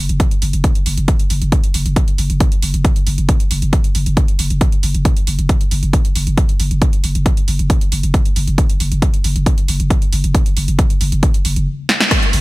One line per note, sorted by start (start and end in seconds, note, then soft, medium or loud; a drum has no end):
0.09 0.20 F#1 medium
0.09 closed hi-hat medium
0.20 kick loud
0.20 closed hi-hat medium
0.31 closed hi-hat medium
0.42 0.53 F#1 medium
0.42 open hi-hat loud
0.53 0.64 F#1 medium
0.53 closed hi-hat medium
0.64 kick loud
0.64 closed hi-hat medium
0.75 closed hi-hat medium
0.86 0.97 F#1 loud
0.86 open hi-hat loud
0.97 1.08 F#1 medium
0.97 closed hi-hat medium
1.08 kick loud
1.08 closed hi-hat medium
1.19 closed hi-hat medium
1.30 1.41 F#1 medium
1.30 open hi-hat loud
1.42 1.52 F#1 medium
1.42 closed hi-hat medium
1.52 kick loud
1.52 closed hi-hat medium
1.64 closed hi-hat medium
1.74 1.85 F#1 loud
1.74 open hi-hat loud
1.86 1.96 F#1 medium
1.86 closed hi-hat medium
1.96 kick loud
1.96 closed hi-hat medium
2.08 closed hi-hat medium
2.18 2.29 F#1 loud
2.18 open hi-hat medium
2.30 2.40 F#1 medium
2.30 closed hi-hat medium
2.40 kick loud
2.40 closed hi-hat medium
2.52 closed hi-hat medium
2.62 2.73 F#1 loud
2.62 open hi-hat loud
2.74 2.84 F#1 medium
2.74 closed hi-hat medium
2.85 kick loud
2.85 closed hi-hat medium
2.96 closed hi-hat medium
3.07 3.17 F#1 loud
3.07 open hi-hat medium
3.18 3.28 F#1 medium
3.18 closed hi-hat medium
3.29 kick loud
3.29 closed hi-hat medium
3.40 closed hi-hat medium
3.51 3.62 F#1 loud
3.51 open hi-hat loud
3.62 3.73 F#1 medium
3.62 closed hi-hat medium
3.73 kick loud
3.73 closed hi-hat medium
3.84 closed hi-hat medium
3.95 4.06 F#1 medium
3.95 open hi-hat medium
4.06 4.17 F#1 medium
4.06 closed hi-hat medium
4.17 kick loud
4.17 closed hi-hat medium
4.28 closed hi-hat medium
4.39 4.50 F#1 loud
4.39 open hi-hat loud
4.50 4.61 F#1 medium
4.50 closed hi-hat medium
4.61 kick loud
4.61 closed hi-hat medium
4.72 closed hi-hat soft
4.83 4.94 F#1 loud
4.83 open hi-hat loud
4.94 5.05 F#1 medium
4.94 closed hi-hat medium
5.05 kick loud
5.05 closed hi-hat medium
5.17 closed hi-hat soft
5.27 5.38 F#1 loud
5.27 open hi-hat loud
5.39 5.49 F#1 medium
5.39 closed hi-hat medium
5.49 kick loud
5.49 closed hi-hat medium
5.61 closed hi-hat medium
5.71 5.82 F#1 loud
5.71 open hi-hat medium
5.83 5.93 F#1 medium
5.83 closed hi-hat soft
5.93 kick loud
5.93 closed hi-hat medium
6.05 closed hi-hat medium
6.15 6.26 F#1 loud
6.15 open hi-hat loud
6.27 6.37 F#1 medium
6.27 closed hi-hat medium
6.38 kick loud
6.38 closed hi-hat medium
6.49 closed hi-hat soft
6.60 6.70 F#1 loud
6.60 open hi-hat medium
6.71 6.81 F#1 medium
6.71 closed hi-hat soft
6.82 kick loud
6.82 closed hi-hat medium
6.93 closed hi-hat soft
7.04 7.15 F#1 loud
7.04 open hi-hat loud
7.15 7.26 F#1 medium
7.15 closed hi-hat medium
7.26 kick loud
7.26 closed hi-hat medium
7.37 closed hi-hat medium
7.48 7.59 F#1 loud
7.48 open hi-hat medium
7.59 7.70 F#1 medium
7.59 closed hi-hat medium
7.70 kick loud
7.70 closed hi-hat medium
7.81 closed hi-hat medium
7.92 8.03 F#1 loud
7.92 open hi-hat loud
8.03 8.14 F#1 medium
8.03 closed hi-hat medium
8.14 kick loud
8.14 closed hi-hat medium
8.25 closed hi-hat medium
8.36 8.47 F#1 loud
8.36 open hi-hat medium
8.47 8.58 F#1 medium
8.47 closed hi-hat soft
8.58 kick loud
8.58 closed hi-hat medium
8.70 closed hi-hat medium
8.80 8.91 F#1 loud
8.80 open hi-hat loud
8.92 9.02 F#1 medium
8.92 closed hi-hat medium
9.02 kick loud
9.02 closed hi-hat medium
9.14 closed hi-hat medium
9.24 9.35 F#1 loud
9.24 open hi-hat medium
9.36 9.46 F#1 medium
9.36 closed hi-hat medium
9.46 kick loud
9.46 closed hi-hat medium
9.58 closed hi-hat medium
9.68 9.79 F#1 loud
9.68 open hi-hat loud
9.80 9.90 F#1 medium
9.80 closed hi-hat medium
9.90 kick loud
9.90 closed hi-hat medium
10.02 closed hi-hat medium
10.13 10.23 F#1 loud
10.13 open hi-hat medium
10.24 10.34 F#1 medium
10.24 closed hi-hat medium
10.35 kick loud
10.35 closed hi-hat medium
10.46 closed hi-hat medium
10.57 10.67 F#1 loud
10.57 open hi-hat loud
10.68 10.78 F#1 medium
10.68 closed hi-hat medium
10.79 kick loud
10.79 closed hi-hat medium
10.90 closed hi-hat medium
11.01 11.12 F#1 loud
11.01 open hi-hat medium
11.12 11.23 F#1 medium
11.12 closed hi-hat medium
11.23 kick loud
11.23 closed hi-hat medium
11.34 closed hi-hat medium
11.45 11.56 F#1 loud
11.45 open hi-hat loud
11.56 11.67 F#1 medium
11.56 closed hi-hat medium
11.89 snare medium
12.00 snare loud
12.11 kick loud
12.11 cross-stick medium
12.11 closed hi-hat medium
12.11 ride medium
12.23 closed hi-hat medium
12.33 12.41 F#1 loud
12.33 open hi-hat loud